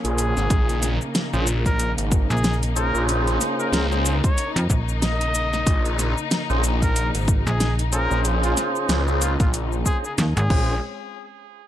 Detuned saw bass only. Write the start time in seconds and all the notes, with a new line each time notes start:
0.04 A#1
0.37 G#1
0.50 A#1
1.33 A#1
1.98 G#1
2.94 A#1
3.72 C#2
5.67 A#1
6.50 A#1
7.14 G#1
8.11 A#1
8.89 C#2
9.40 A#1
10.50 A#1